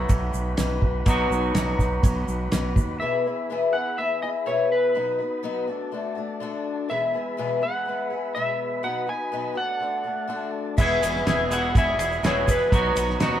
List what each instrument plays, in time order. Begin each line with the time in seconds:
Already playing: clean electric guitar B2 F#3 B3 D#4 F#4, mandolin A3 F#4, twelve-string acoustic guitar B3 D#4 F#4, tonewheel organ D#4 B4 F#5 B5
0.09 fingered electric bass B1, kick, ride bell, shaker
0.34 fingered electric bass B1, shaker
0.57 fingered electric bass B1, twelve-string acoustic guitar F#3 B3 D#4 F#4, snare, ride bell, shaker
0.81 fingered electric bass B1, twelve-string acoustic guitar B3 D#4 F#4, kick
1.06 fingered electric bass B1, twelve-string acoustic guitar B2 F#3 B3 D#4 F#4, kick, ride bell, shaker
1.29 fingered electric bass B1, twelve-string acoustic guitar B3 D#4 F#4, shaker
1.55 fingered electric bass B1, twelve-string acoustic guitar F#3 B3 D#4 F#4, snare, ride bell, shaker
1.79 fingered electric bass B1, twelve-string acoustic guitar B3 D#4 F#4, kick, snare, shaker
2.03 fingered electric bass B1, kick, ride bell, shaker
2.28 fingered electric bass B1, shaker
2.51 fingered electric bass B1, twelve-string acoustic guitar F#3 B3 D#4 F#4, snare, ride bell, shaker
2.76 fingered electric bass D#2, twelve-string acoustic guitar B3 D#4 F#4, kick, shaker
3.00 twelve-string acoustic guitar E2 B2 E3 B3 E4 G#4, tonewheel organ G#4 B4 E5 B5, electric slide guitar E5
3.26 twelve-string acoustic guitar E3 B3 E4 G#4
3.50 twelve-string acoustic guitar E2 B2 E3 B3 E4 G#4
3.72 twelve-string acoustic guitar E3 B3 E4 G#4, electric slide guitar F#5
3.98 twelve-string acoustic guitar E3 B3 E4 G#4, electric slide guitar E5
4.22 twelve-string acoustic guitar E3 B3 E4 G#4, electric slide guitar D#5
4.46 twelve-string acoustic guitar E2 B2 E3 B3 E4 G#4, electric slide guitar C#5
4.72 electric slide guitar B4
4.95 twelve-string acoustic guitar B2 F#3 B3 D#4 F#4, tonewheel organ F#4 D#5
5.18 twelve-string acoustic guitar B3 D#4 F#4
5.43 twelve-string acoustic guitar B2 F#3 B3 D#4 F#4
5.68 twelve-string acoustic guitar A3 D4 F#4, tonewheel organ A4 D5 A5
5.92 twelve-string acoustic guitar D3 A3 D4 F#4
6.15 twelve-string acoustic guitar A3 D4 F#4
6.40 twelve-string acoustic guitar D3 A3 D4 F#4
6.89 twelve-string acoustic guitar E2 B2 E3 G#3 B3 G#4, tonewheel organ G#4 B4 E5 B5, electric slide guitar E5
7.13 twelve-string acoustic guitar E3 G#3 B3 G#4
7.37 twelve-string acoustic guitar E2 B2 E3 G#3 B3 G#4
7.61 twelve-string acoustic guitar E3 G#3 B3 G#4, electric slide guitar F#5
7.85 twelve-string acoustic guitar E3 G#3 B3 G#4
8.10 twelve-string acoustic guitar E3 G#3 B3 G#4
8.35 twelve-string acoustic guitar E2 B2 E3 G#3 B3 G#4, electric slide guitar E5
8.83 twelve-string acoustic guitar B2 F#3 B3 D#4 F#4, tonewheel organ F#4 D#5 B5, electric slide guitar F#5
9.07 twelve-string acoustic guitar B3 D#4 F#4, electric slide guitar G#5
9.32 twelve-string acoustic guitar B2 F#3 B3 D#4 F#4
9.55 twelve-string acoustic guitar A3 D4 F#4, tonewheel organ F#4 A4 D5 A5, electric slide guitar F#5
9.80 twelve-string acoustic guitar D3 A3 D4 F#4
10.04 twelve-string acoustic guitar A3 D4 F#4
10.28 twelve-string acoustic guitar D3 A3 D4 F#4
10.77 fingered electric bass E1, twelve-string acoustic guitar E2 B2 E3 G#3 B3 G#4, tonewheel organ G#4 B4 E5 B5, electric slide guitar E5, kick, crash, shaker
10.81 clean electric guitar E4
11.01 fingered electric bass E1, twelve-string acoustic guitar E3 G#3 B3 G#4, clean electric guitar E4, ride, shaker
11.16 snare
11.25 fingered electric bass E1, twelve-string acoustic guitar E2 B2 E3 G#3 B3 G#4, clean electric guitar E4, snare, ride, shaker
11.51 fingered electric bass E1, clean electric guitar E2 B2 E4, twelve-string acoustic guitar E3 G#3 B3 G#4, electric slide guitar F#5, ride, shaker
11.74 fingered electric bass E1, twelve-string acoustic guitar E3 G#3 B3 G#4, clean electric guitar E4, electric slide guitar E5, kick, ride, shaker
11.98 fingered electric bass E1, twelve-string acoustic guitar G#3 B3 G#4, clean electric guitar E4, ride, shaker
12.03 twelve-string acoustic guitar E3
12.12 shaker
12.23 fingered electric bass E1, twelve-string acoustic guitar E2 B2 E3 G#3 B3 G#4, clean electric guitar E4, electric slide guitar C#5, snare, ride, shaker
12.46 clean electric guitar E3 B3 E4 G#4, kick, ride, shaker
12.51 electric slide guitar B4
12.72 fingered electric bass B1, twelve-string acoustic guitar B2 F#3 B3 D#4 F#4, tonewheel organ F#4 D#5, kick, ride, shaker
12.96 fingered electric bass B1, twelve-string acoustic guitar B3 D#4 F#4, ride, shaker
13.09 snare
13.20 fingered electric bass D#2, twelve-string acoustic guitar B2 F#3 B3 D#4 F#4, snare, ride, shaker